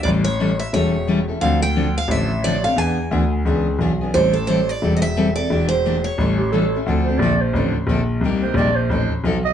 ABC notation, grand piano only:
X:1
M:4/4
L:1/8
Q:"Swing" 1/4=176
K:Dm
V:1 name="Grand piano" clef=bass
A,,,4 E,,,4 | D,,4 A,,,4 | E,,2 D,,2 ^C,,2 =B,,,2 | A,,,4 E,,,4 |
E,,,4 A,,,4 | D,,2 B,,,2 A,,, A,,, B,,,2 | C,,2 B,,,2 A,,, A,,, =B,,,2 |]